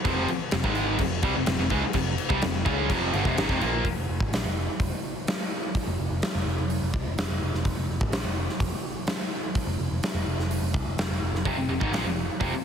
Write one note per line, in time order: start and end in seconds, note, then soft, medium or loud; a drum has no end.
0.05 0.27 F1 medium
0.05 0.28 F2 medium
0.05 0.28 C3 medium
0.05 0.29 F3 loud
0.05 kick loud
0.05 crash medium
0.28 muted picked electric bass stroke soft
0.28 muted distorted electric guitar stroke medium
0.28 crash medium
0.51 0.63 F1 medium
0.51 0.63 F2 medium
0.51 0.64 C3 medium
0.51 snare loud
0.51 crash medium
0.64 0.97 G#1 medium
0.64 0.99 G#2 medium
0.64 0.99 D#3 loud
0.64 1.00 G#3 loud
0.64 kick loud
0.75 crash medium
0.99 1.22 F1 medium
0.99 1.19 F2 medium
0.99 1.19 C3 medium
0.99 kick medium
0.99 crash medium
1.22 1.35 C2 medium
1.22 1.34 C3 medium
1.22 1.35 G3 loud
1.22 kick loud
1.22 crash medium
1.35 1.46 F1 medium
1.35 1.46 F2 medium
1.35 1.47 C3 medium
1.46 1.58 F1 medium
1.46 1.57 F2 medium
1.46 1.58 C3 medium
1.46 snare loud
1.46 crash medium
1.58 1.69 F1 medium
1.58 1.71 F2 medium
1.58 1.71 C3 medium
1.58 snare soft
1.70 1.82 C#2 medium
1.70 1.82 C#3 medium
1.70 1.83 G#3 loud
1.70 kick loud
1.70 crash medium
1.83 muted distorted electric guitar stroke medium
1.83 muted picked electric bass stroke soft
1.93 2.17 F1 medium
1.93 2.14 F2 medium
1.93 2.14 C3 medium
1.93 kick medium
1.93 crash medium
2.18 crash medium
2.29 2.42 C2 medium
2.29 2.41 C3 medium
2.29 2.42 G3 loud
2.29 kick loud
2.42 2.65 F1 medium
2.42 2.61 F2 medium
2.42 2.61 C3 medium
2.42 snare loud
2.42 crash medium
2.65 2.88 C#2 medium
2.65 2.89 C#3 medium
2.65 2.89 G#3 loud
2.65 2.89 C#4 medium
2.65 kick loud
2.65 crash medium
2.89 3.12 F1 medium
2.89 3.13 F2 medium
2.89 3.13 C3 medium
2.89 3.13 F3 loud
2.89 kick loud
2.89 crash medium
3.13 3.25 G1 medium
3.13 3.25 G2 medium
3.13 3.25 D3 loud
3.13 crash medium
3.25 3.37 F1 medium
3.25 3.37 F2 medium
3.25 3.37 C3 loud
3.25 kick loud
3.25 snare soft
3.37 3.48 G#1 medium
3.37 3.49 G#2 medium
3.37 3.49 D#3 loud
3.37 snare loud
3.37 crash medium
3.49 3.60 F1 loud
3.49 3.61 F2 medium
3.49 3.61 C3 medium
3.49 kick loud
3.49 snare soft
3.61 3.84 A#1 medium
3.61 3.84 A#2 medium
3.61 3.85 F3 medium
3.61 3.85 A#3 loud
3.61 crash medium
3.85 3.96 F1 medium
3.85 kick medium
3.85 open hi-hat soft
3.97 4.08 F1 medium
4.09 4.20 F1 medium
4.20 4.32 G#1 medium
4.20 kick medium
4.33 4.44 A#1 medium
4.33 snare medium
4.33 open hi-hat soft
4.45 4.67 F1 medium
4.80 4.91 F1 medium
4.80 kick medium
4.80 open hi-hat medium
5.27 snare loud
5.27 open hi-hat medium
5.75 kick medium
5.75 open hi-hat medium
5.87 5.98 F1 medium
5.99 6.10 F1 medium
6.10 6.22 F1 medium
6.22 muted picked electric bass stroke soft
6.22 snare loud
6.22 open hi-hat medium
6.35 6.45 F1 medium
6.46 6.57 F1 medium
6.58 6.81 F1 medium
6.70 open hi-hat medium
6.82 6.93 F1 medium
6.94 7.05 C2 medium
6.94 kick loud
7.06 7.17 F1 medium
7.17 7.29 F1 medium
7.17 snare loud
7.17 open hi-hat soft
7.30 7.41 F1 medium
7.42 7.53 F1 medium
7.53 7.64 F1 medium
7.53 snare soft
7.65 7.76 F1 medium
7.65 kick medium
7.65 open hi-hat soft
7.77 7.88 F1 medium
7.89 8.00 F1 medium
8.01 8.12 G#1 medium
8.01 kick loud
8.12 8.24 A#1 medium
8.12 snare loud
8.12 open hi-hat soft
8.24 8.47 F1 medium
8.49 snare soft
8.60 8.71 F1 medium
8.60 kick loud
8.60 open hi-hat medium
9.07 snare loud
9.07 open hi-hat medium
9.55 kick loud
9.55 open hi-hat medium
9.67 9.78 F1 medium
9.79 9.90 F1 medium
9.91 10.02 F1 medium
10.02 muted picked electric bass stroke soft
10.02 snare loud
10.02 open hi-hat medium
10.14 10.25 F1 medium
10.26 10.37 F1 medium
10.38 10.60 F1 medium
10.38 snare soft
10.51 open hi-hat medium
10.62 10.73 F1 medium
10.74 10.85 C2 medium
10.74 kick medium
10.85 10.97 F1 medium
10.97 11.09 F1 medium
10.97 snare loud
10.97 open hi-hat medium
11.10 11.21 F1 medium
11.22 11.32 F1 medium
11.33 11.45 F1 medium
11.33 snare soft
11.45 11.56 F1 medium
11.45 11.56 F2 medium
11.45 11.57 C3 loud
11.45 kick medium
11.45 open hi-hat soft
11.56 11.68 F1 medium
11.56 11.68 F2 medium
11.56 11.68 C3 medium
11.69 11.80 F1 medium
11.69 11.81 F2 medium
11.69 11.81 C3 medium
11.81 11.91 G#1 medium
11.81 11.93 G#2 medium
11.81 11.93 D#3 medium
11.81 kick loud
11.92 12.04 A#1 medium
11.92 12.04 A#2 medium
11.92 12.05 F3 medium
11.92 snare loud
11.92 open hi-hat soft
12.04 12.27 F1 medium
12.04 12.24 F2 medium
12.04 12.24 C3 medium
12.40 12.52 F1 medium
12.40 12.52 F2 medium
12.40 12.52 C3 medium
12.40 kick loud
12.40 open hi-hat medium